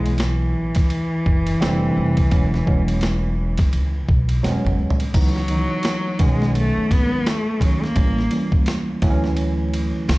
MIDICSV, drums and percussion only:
0, 0, Header, 1, 2, 480
1, 0, Start_track
1, 0, Key_signature, 4, "major"
1, 0, Tempo, 705882
1, 1578, Time_signature, 4, 2, 24, 8
1, 6924, End_track
2, 0, Start_track
2, 0, Title_t, "Drums"
2, 38, Note_on_c, 9, 51, 50
2, 106, Note_off_c, 9, 51, 0
2, 122, Note_on_c, 9, 44, 45
2, 122, Note_on_c, 9, 51, 65
2, 135, Note_on_c, 9, 38, 93
2, 190, Note_off_c, 9, 44, 0
2, 190, Note_off_c, 9, 51, 0
2, 203, Note_off_c, 9, 38, 0
2, 508, Note_on_c, 9, 51, 59
2, 517, Note_on_c, 9, 36, 86
2, 522, Note_on_c, 9, 38, 33
2, 576, Note_off_c, 9, 51, 0
2, 585, Note_off_c, 9, 36, 0
2, 590, Note_off_c, 9, 38, 0
2, 613, Note_on_c, 9, 51, 69
2, 681, Note_off_c, 9, 51, 0
2, 857, Note_on_c, 9, 36, 88
2, 925, Note_off_c, 9, 36, 0
2, 996, Note_on_c, 9, 51, 56
2, 1064, Note_off_c, 9, 51, 0
2, 1101, Note_on_c, 9, 44, 47
2, 1101, Note_on_c, 9, 51, 66
2, 1103, Note_on_c, 9, 38, 105
2, 1169, Note_off_c, 9, 44, 0
2, 1169, Note_off_c, 9, 51, 0
2, 1171, Note_off_c, 9, 38, 0
2, 1475, Note_on_c, 9, 51, 55
2, 1479, Note_on_c, 9, 36, 85
2, 1543, Note_off_c, 9, 51, 0
2, 1547, Note_off_c, 9, 36, 0
2, 1573, Note_on_c, 9, 51, 70
2, 1575, Note_on_c, 9, 36, 98
2, 1641, Note_off_c, 9, 51, 0
2, 1643, Note_off_c, 9, 36, 0
2, 1727, Note_on_c, 9, 38, 30
2, 1795, Note_off_c, 9, 38, 0
2, 1817, Note_on_c, 9, 36, 85
2, 1885, Note_off_c, 9, 36, 0
2, 1959, Note_on_c, 9, 51, 56
2, 2027, Note_off_c, 9, 51, 0
2, 2046, Note_on_c, 9, 44, 42
2, 2046, Note_on_c, 9, 51, 60
2, 2059, Note_on_c, 9, 38, 94
2, 2114, Note_off_c, 9, 44, 0
2, 2114, Note_off_c, 9, 51, 0
2, 2127, Note_off_c, 9, 38, 0
2, 2431, Note_on_c, 9, 51, 56
2, 2439, Note_on_c, 9, 36, 89
2, 2445, Note_on_c, 9, 38, 31
2, 2499, Note_off_c, 9, 51, 0
2, 2507, Note_off_c, 9, 36, 0
2, 2513, Note_off_c, 9, 38, 0
2, 2535, Note_on_c, 9, 51, 64
2, 2603, Note_off_c, 9, 51, 0
2, 2778, Note_on_c, 9, 36, 92
2, 2846, Note_off_c, 9, 36, 0
2, 2916, Note_on_c, 9, 51, 52
2, 2984, Note_off_c, 9, 51, 0
2, 3021, Note_on_c, 9, 44, 50
2, 3021, Note_on_c, 9, 51, 69
2, 3023, Note_on_c, 9, 38, 52
2, 3089, Note_off_c, 9, 44, 0
2, 3089, Note_off_c, 9, 51, 0
2, 3091, Note_off_c, 9, 38, 0
2, 3172, Note_on_c, 9, 45, 60
2, 3240, Note_off_c, 9, 45, 0
2, 3335, Note_on_c, 9, 43, 97
2, 3399, Note_on_c, 9, 51, 54
2, 3403, Note_off_c, 9, 43, 0
2, 3467, Note_off_c, 9, 51, 0
2, 3496, Note_on_c, 9, 51, 75
2, 3497, Note_on_c, 9, 36, 100
2, 3497, Note_on_c, 9, 49, 82
2, 3564, Note_off_c, 9, 51, 0
2, 3565, Note_off_c, 9, 36, 0
2, 3565, Note_off_c, 9, 49, 0
2, 3646, Note_on_c, 9, 38, 32
2, 3714, Note_off_c, 9, 38, 0
2, 3727, Note_on_c, 9, 51, 59
2, 3795, Note_off_c, 9, 51, 0
2, 3964, Note_on_c, 9, 44, 46
2, 3964, Note_on_c, 9, 51, 61
2, 3977, Note_on_c, 9, 38, 105
2, 4032, Note_off_c, 9, 44, 0
2, 4032, Note_off_c, 9, 51, 0
2, 4045, Note_off_c, 9, 38, 0
2, 4210, Note_on_c, 9, 51, 77
2, 4214, Note_on_c, 9, 36, 102
2, 4278, Note_off_c, 9, 51, 0
2, 4282, Note_off_c, 9, 36, 0
2, 4365, Note_on_c, 9, 38, 31
2, 4433, Note_off_c, 9, 38, 0
2, 4455, Note_on_c, 9, 51, 70
2, 4523, Note_off_c, 9, 51, 0
2, 4698, Note_on_c, 9, 36, 89
2, 4701, Note_on_c, 9, 51, 66
2, 4766, Note_off_c, 9, 36, 0
2, 4769, Note_off_c, 9, 51, 0
2, 4939, Note_on_c, 9, 44, 51
2, 4939, Note_on_c, 9, 51, 67
2, 4942, Note_on_c, 9, 38, 100
2, 5007, Note_off_c, 9, 44, 0
2, 5007, Note_off_c, 9, 51, 0
2, 5010, Note_off_c, 9, 38, 0
2, 5174, Note_on_c, 9, 36, 84
2, 5180, Note_on_c, 9, 51, 62
2, 5242, Note_off_c, 9, 36, 0
2, 5248, Note_off_c, 9, 51, 0
2, 5329, Note_on_c, 9, 38, 30
2, 5397, Note_off_c, 9, 38, 0
2, 5411, Note_on_c, 9, 51, 77
2, 5414, Note_on_c, 9, 36, 109
2, 5479, Note_off_c, 9, 51, 0
2, 5482, Note_off_c, 9, 36, 0
2, 5566, Note_on_c, 9, 38, 31
2, 5634, Note_off_c, 9, 38, 0
2, 5649, Note_on_c, 9, 51, 64
2, 5717, Note_off_c, 9, 51, 0
2, 5794, Note_on_c, 9, 36, 85
2, 5862, Note_off_c, 9, 36, 0
2, 5889, Note_on_c, 9, 44, 47
2, 5889, Note_on_c, 9, 51, 61
2, 5902, Note_on_c, 9, 38, 100
2, 5957, Note_off_c, 9, 44, 0
2, 5957, Note_off_c, 9, 51, 0
2, 5970, Note_off_c, 9, 38, 0
2, 6133, Note_on_c, 9, 51, 67
2, 6135, Note_on_c, 9, 36, 107
2, 6201, Note_off_c, 9, 51, 0
2, 6203, Note_off_c, 9, 36, 0
2, 6282, Note_on_c, 9, 38, 34
2, 6350, Note_off_c, 9, 38, 0
2, 6368, Note_on_c, 9, 51, 72
2, 6436, Note_off_c, 9, 51, 0
2, 6620, Note_on_c, 9, 51, 63
2, 6688, Note_off_c, 9, 51, 0
2, 6861, Note_on_c, 9, 44, 55
2, 6861, Note_on_c, 9, 51, 70
2, 6863, Note_on_c, 9, 38, 109
2, 6924, Note_off_c, 9, 38, 0
2, 6924, Note_off_c, 9, 44, 0
2, 6924, Note_off_c, 9, 51, 0
2, 6924, End_track
0, 0, End_of_file